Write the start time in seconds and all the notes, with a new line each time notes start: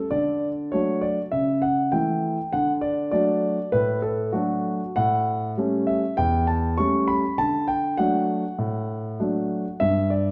0.11 D3 D5
0.72 F#3 A3 D4 C#5
1.01 D5
1.32 C#3 E5
1.62 F#5
1.92 E3 A3 E4 G5
2.53 D3 F#5
2.81 D5
3.11 F#3 A3 D4 D5
3.72 A2 B4
4.02 A4
4.33 F#3 A3 D4 F#4
4.96 A2 F#5
5.57 G3 A3 C#4
5.87 E5
6.17 E2 G5
6.47 A5
6.78 G3 A3 C#4 C#6
7.08 B5
7.38 D3 A5
7.68 G5
7.97 F#3 A3 D4 F#5
8.58 A2
9.20 F#3 A3 D4
9.80 G2 E5
10.10 D5